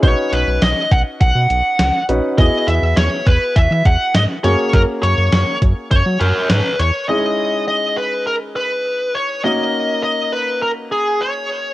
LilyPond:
<<
  \new Staff \with { instrumentName = "Lead electric guitar" } { \time 4/4 \key cis \dorian \tempo 4 = 102 cis''8 b'8 dis''8 fis''8 fis''4. r8 | dis''8 e''8 cis''8 b'8 e''8 fis''8 dis''8 cis''8 | ais'8 cis''4 r8 cis''8 ais'8 b'8 cis''8 | dis''4 dis''8 b'8 ais'8 b'4 cis''8 |
dis''4 dis''8 b'8 ais'8 gis'8 cis''4 | }
  \new Staff \with { instrumentName = "Grand piano" } { \time 4/4 \key cis \dorian <cis' dis' fis' b'>2.~ <cis' dis' fis' b'>8 <cis' dis' fis' b'>8 | <b e' fis' gis'>2.~ <b e' fis' gis'>8 <ais cis' fis' gis'>8~ | <ais cis' fis' gis'>2.~ <ais cis' fis' gis'>8 r8 | <gis cis' dis' e' gis'>1 |
<ais cis' dis' fis' ais'>1 | }
  \new Staff \with { instrumentName = "Analog synth bass" } { \clef bass \time 4/4 \key cis \dorian b,,16 r16 b,,16 b,,16 b,,16 r16 b,,16 r16 b,,16 b,16 b,,16 r16 cis,16 r16 ais,,16 r16 | e,16 r16 e,16 e,16 e,16 r16 e,16 r16 e,16 e16 e,16 r16 gis,16 r16 fis,16 r16 | fis,16 r16 fis,16 fis,16 fis,16 r16 fis,16 r16 fis,16 fis16 fis,16 r16 gis,16 r16 e,16 r16 | r1 |
r1 | }
  \new DrumStaff \with { instrumentName = "Drums" } \drummode { \time 4/4 <hh bd>8 hh8 <hh sn>8 <hh bd>8 <hh bd>8 hh8 <hh sn>8 hh8 | <hh bd>8 hh8 <hh sn>8 <hh bd>8 <hh bd>8 <hh bd>8 <hh sn>8 hh8 | <hh bd>8 hh8 <hh sn>8 <hh bd>8 <hh bd>8 hh8 <hh sn>8 hh8 | r4 r4 r4 r4 |
r4 r4 r4 r4 | }
>>